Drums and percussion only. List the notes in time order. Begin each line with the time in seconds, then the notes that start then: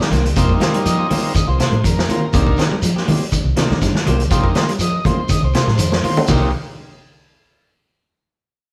0.01 snare
0.11 snare, closed hi-hat, high conga, low conga, shekere
0.26 closed hi-hat
0.36 kick, closed hi-hat, shekere
0.49 kick
0.60 snare, closed hi-hat, high conga, shekere
0.74 closed hi-hat
0.85 closed hi-hat, high conga, shekere
1.10 open hi-hat, high conga, low conga, shekere
1.35 kick, closed hi-hat, shekere
1.60 snare, closed hi-hat, shekere
1.73 high conga
1.84 kick, closed hi-hat, shekere
1.97 snare, high conga
2.09 closed hi-hat, low conga, shekere
2.33 kick, closed hi-hat, shekere
2.47 kick
2.57 snare, closed hi-hat, high conga, shekere
2.72 high conga
2.82 closed hi-hat, high conga, shekere
2.97 snare
3.08 open hi-hat, high conga, low conga, shekere
3.32 kick, closed hi-hat, shekere
3.56 snare, closed hi-hat, low conga, shekere
3.70 snare, high conga
3.81 kick, snare, closed hi-hat, low conga, shekere
3.95 snare, high conga
4.07 closed hi-hat, high conga, low conga, shekere
4.20 closed hi-hat
4.31 kick, closed hi-hat, shekere
4.44 kick
4.55 snare, closed hi-hat, high conga, shekere
4.69 closed hi-hat
4.79 closed hi-hat, shekere
5.04 kick, closed hi-hat, high conga, low conga, shekere
5.29 kick, closed hi-hat, shekere
5.54 snare, closed hi-hat, shekere
5.67 snare, high conga
5.78 closed hi-hat, shekere
5.92 snare, high conga
6.03 open hi-hat, low conga, shekere
6.17 low conga
6.27 kick, crash, low conga, shekere